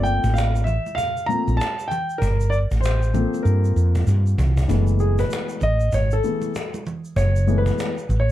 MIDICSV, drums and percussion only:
0, 0, Header, 1, 3, 480
1, 0, Start_track
1, 0, Tempo, 618557
1, 1720, Time_signature, 4, 2, 24, 8
1, 6454, End_track
2, 0, Start_track
2, 0, Title_t, "Cajon"
2, 39, Note_on_c, 9, 38, 29
2, 117, Note_off_c, 9, 38, 0
2, 186, Note_on_c, 9, 36, 79
2, 263, Note_off_c, 9, 36, 0
2, 298, Note_on_c, 9, 38, 113
2, 375, Note_off_c, 9, 38, 0
2, 444, Note_on_c, 9, 38, 30
2, 518, Note_off_c, 9, 38, 0
2, 518, Note_on_c, 9, 38, 35
2, 596, Note_off_c, 9, 38, 0
2, 663, Note_on_c, 9, 38, 24
2, 740, Note_off_c, 9, 38, 0
2, 760, Note_on_c, 9, 36, 85
2, 838, Note_off_c, 9, 36, 0
2, 1008, Note_on_c, 9, 38, 32
2, 1086, Note_off_c, 9, 38, 0
2, 1161, Note_on_c, 9, 38, 23
2, 1239, Note_off_c, 9, 38, 0
2, 1252, Note_on_c, 9, 38, 121
2, 1330, Note_off_c, 9, 38, 0
2, 1481, Note_on_c, 9, 38, 31
2, 1559, Note_off_c, 9, 38, 0
2, 1721, Note_on_c, 9, 36, 96
2, 1799, Note_off_c, 9, 36, 0
2, 1957, Note_on_c, 9, 38, 31
2, 2034, Note_off_c, 9, 38, 0
2, 2107, Note_on_c, 9, 36, 77
2, 2121, Note_on_c, 9, 38, 31
2, 2184, Note_off_c, 9, 36, 0
2, 2199, Note_off_c, 9, 38, 0
2, 2216, Note_on_c, 9, 38, 115
2, 2294, Note_off_c, 9, 38, 0
2, 2365, Note_on_c, 9, 38, 29
2, 2436, Note_off_c, 9, 38, 0
2, 2436, Note_on_c, 9, 38, 36
2, 2514, Note_off_c, 9, 38, 0
2, 2583, Note_on_c, 9, 38, 23
2, 2661, Note_off_c, 9, 38, 0
2, 2682, Note_on_c, 9, 38, 39
2, 2760, Note_off_c, 9, 38, 0
2, 2926, Note_on_c, 9, 38, 31
2, 3003, Note_off_c, 9, 38, 0
2, 3068, Note_on_c, 9, 36, 82
2, 3146, Note_off_c, 9, 36, 0
2, 3161, Note_on_c, 9, 38, 35
2, 3173, Note_off_c, 9, 38, 0
2, 3173, Note_on_c, 9, 38, 52
2, 3250, Note_off_c, 9, 38, 0
2, 3402, Note_on_c, 9, 36, 84
2, 3480, Note_off_c, 9, 36, 0
2, 3550, Note_on_c, 9, 36, 93
2, 3627, Note_off_c, 9, 36, 0
2, 3642, Note_on_c, 9, 36, 88
2, 3719, Note_off_c, 9, 36, 0
2, 3879, Note_on_c, 9, 38, 28
2, 3956, Note_off_c, 9, 38, 0
2, 4026, Note_on_c, 9, 36, 80
2, 4104, Note_off_c, 9, 36, 0
2, 4136, Note_on_c, 9, 38, 120
2, 4214, Note_off_c, 9, 38, 0
2, 4280, Note_on_c, 9, 38, 31
2, 4354, Note_off_c, 9, 38, 0
2, 4354, Note_on_c, 9, 38, 34
2, 4431, Note_off_c, 9, 38, 0
2, 4598, Note_on_c, 9, 36, 87
2, 4676, Note_off_c, 9, 36, 0
2, 4843, Note_on_c, 9, 38, 33
2, 4920, Note_off_c, 9, 38, 0
2, 4998, Note_on_c, 9, 38, 22
2, 5075, Note_off_c, 9, 38, 0
2, 5090, Note_on_c, 9, 38, 107
2, 5167, Note_off_c, 9, 38, 0
2, 5319, Note_on_c, 9, 38, 31
2, 5397, Note_off_c, 9, 38, 0
2, 5559, Note_on_c, 9, 36, 90
2, 5636, Note_off_c, 9, 36, 0
2, 5792, Note_on_c, 9, 38, 31
2, 5870, Note_off_c, 9, 38, 0
2, 5943, Note_on_c, 9, 36, 81
2, 6021, Note_off_c, 9, 36, 0
2, 6054, Note_on_c, 9, 38, 113
2, 6132, Note_off_c, 9, 38, 0
2, 6198, Note_on_c, 9, 38, 33
2, 6272, Note_off_c, 9, 38, 0
2, 6272, Note_on_c, 9, 38, 36
2, 6350, Note_off_c, 9, 38, 0
2, 6423, Note_on_c, 9, 38, 21
2, 6454, Note_off_c, 9, 38, 0
2, 6454, End_track
3, 0, Start_track
3, 0, Title_t, "Drums"
3, 38, Note_on_c, 9, 82, 42
3, 116, Note_off_c, 9, 82, 0
3, 184, Note_on_c, 9, 82, 48
3, 262, Note_off_c, 9, 82, 0
3, 281, Note_on_c, 9, 82, 60
3, 358, Note_off_c, 9, 82, 0
3, 430, Note_on_c, 9, 82, 45
3, 508, Note_off_c, 9, 82, 0
3, 519, Note_on_c, 9, 64, 50
3, 519, Note_on_c, 9, 82, 42
3, 597, Note_off_c, 9, 64, 0
3, 597, Note_off_c, 9, 82, 0
3, 670, Note_on_c, 9, 63, 44
3, 670, Note_on_c, 9, 82, 42
3, 748, Note_off_c, 9, 63, 0
3, 748, Note_off_c, 9, 82, 0
3, 760, Note_on_c, 9, 82, 64
3, 837, Note_off_c, 9, 82, 0
3, 908, Note_on_c, 9, 82, 39
3, 985, Note_off_c, 9, 82, 0
3, 1010, Note_on_c, 9, 82, 46
3, 1087, Note_off_c, 9, 82, 0
3, 1147, Note_on_c, 9, 63, 52
3, 1147, Note_on_c, 9, 82, 41
3, 1225, Note_off_c, 9, 63, 0
3, 1225, Note_off_c, 9, 82, 0
3, 1246, Note_on_c, 9, 82, 65
3, 1323, Note_off_c, 9, 82, 0
3, 1391, Note_on_c, 9, 82, 46
3, 1468, Note_off_c, 9, 82, 0
3, 1485, Note_on_c, 9, 64, 66
3, 1485, Note_on_c, 9, 82, 51
3, 1563, Note_off_c, 9, 64, 0
3, 1563, Note_off_c, 9, 82, 0
3, 1627, Note_on_c, 9, 82, 35
3, 1705, Note_off_c, 9, 82, 0
3, 1726, Note_on_c, 9, 82, 60
3, 1803, Note_off_c, 9, 82, 0
3, 1866, Note_on_c, 9, 82, 50
3, 1944, Note_off_c, 9, 82, 0
3, 1958, Note_on_c, 9, 82, 35
3, 2036, Note_off_c, 9, 82, 0
3, 2103, Note_on_c, 9, 82, 48
3, 2180, Note_off_c, 9, 82, 0
3, 2199, Note_on_c, 9, 82, 58
3, 2277, Note_off_c, 9, 82, 0
3, 2347, Note_on_c, 9, 82, 44
3, 2424, Note_off_c, 9, 82, 0
3, 2440, Note_on_c, 9, 64, 52
3, 2440, Note_on_c, 9, 82, 41
3, 2518, Note_off_c, 9, 64, 0
3, 2518, Note_off_c, 9, 82, 0
3, 2593, Note_on_c, 9, 63, 42
3, 2593, Note_on_c, 9, 82, 43
3, 2671, Note_off_c, 9, 63, 0
3, 2671, Note_off_c, 9, 82, 0
3, 2682, Note_on_c, 9, 82, 61
3, 2760, Note_off_c, 9, 82, 0
3, 2828, Note_on_c, 9, 82, 40
3, 2905, Note_off_c, 9, 82, 0
3, 2925, Note_on_c, 9, 82, 49
3, 3003, Note_off_c, 9, 82, 0
3, 3066, Note_on_c, 9, 63, 56
3, 3066, Note_on_c, 9, 82, 43
3, 3143, Note_off_c, 9, 63, 0
3, 3143, Note_off_c, 9, 82, 0
3, 3158, Note_on_c, 9, 82, 62
3, 3236, Note_off_c, 9, 82, 0
3, 3311, Note_on_c, 9, 82, 43
3, 3389, Note_off_c, 9, 82, 0
3, 3407, Note_on_c, 9, 64, 66
3, 3407, Note_on_c, 9, 82, 48
3, 3485, Note_off_c, 9, 64, 0
3, 3485, Note_off_c, 9, 82, 0
3, 3545, Note_on_c, 9, 82, 37
3, 3623, Note_off_c, 9, 82, 0
3, 3644, Note_on_c, 9, 82, 57
3, 3721, Note_off_c, 9, 82, 0
3, 3780, Note_on_c, 9, 82, 47
3, 3857, Note_off_c, 9, 82, 0
3, 3875, Note_on_c, 9, 82, 38
3, 3952, Note_off_c, 9, 82, 0
3, 4021, Note_on_c, 9, 82, 44
3, 4099, Note_off_c, 9, 82, 0
3, 4115, Note_on_c, 9, 82, 54
3, 4193, Note_off_c, 9, 82, 0
3, 4260, Note_on_c, 9, 82, 44
3, 4337, Note_off_c, 9, 82, 0
3, 4355, Note_on_c, 9, 64, 52
3, 4355, Note_on_c, 9, 82, 43
3, 4432, Note_off_c, 9, 64, 0
3, 4432, Note_off_c, 9, 82, 0
3, 4502, Note_on_c, 9, 82, 43
3, 4580, Note_off_c, 9, 82, 0
3, 4594, Note_on_c, 9, 82, 55
3, 4672, Note_off_c, 9, 82, 0
3, 4740, Note_on_c, 9, 82, 47
3, 4818, Note_off_c, 9, 82, 0
3, 4840, Note_on_c, 9, 82, 43
3, 4918, Note_off_c, 9, 82, 0
3, 4979, Note_on_c, 9, 63, 55
3, 4979, Note_on_c, 9, 82, 41
3, 5057, Note_off_c, 9, 63, 0
3, 5057, Note_off_c, 9, 82, 0
3, 5081, Note_on_c, 9, 82, 64
3, 5159, Note_off_c, 9, 82, 0
3, 5231, Note_on_c, 9, 63, 66
3, 5231, Note_on_c, 9, 82, 45
3, 5308, Note_off_c, 9, 63, 0
3, 5308, Note_off_c, 9, 82, 0
3, 5328, Note_on_c, 9, 64, 71
3, 5328, Note_on_c, 9, 82, 44
3, 5405, Note_off_c, 9, 64, 0
3, 5405, Note_off_c, 9, 82, 0
3, 5468, Note_on_c, 9, 82, 37
3, 5546, Note_off_c, 9, 82, 0
3, 5569, Note_on_c, 9, 82, 60
3, 5646, Note_off_c, 9, 82, 0
3, 5711, Note_on_c, 9, 82, 51
3, 5788, Note_off_c, 9, 82, 0
3, 5803, Note_on_c, 9, 82, 37
3, 5881, Note_off_c, 9, 82, 0
3, 5950, Note_on_c, 9, 82, 41
3, 6028, Note_off_c, 9, 82, 0
3, 6041, Note_on_c, 9, 82, 56
3, 6119, Note_off_c, 9, 82, 0
3, 6191, Note_on_c, 9, 82, 45
3, 6269, Note_off_c, 9, 82, 0
3, 6285, Note_on_c, 9, 64, 55
3, 6285, Note_on_c, 9, 82, 39
3, 6363, Note_off_c, 9, 64, 0
3, 6363, Note_off_c, 9, 82, 0
3, 6454, End_track
0, 0, End_of_file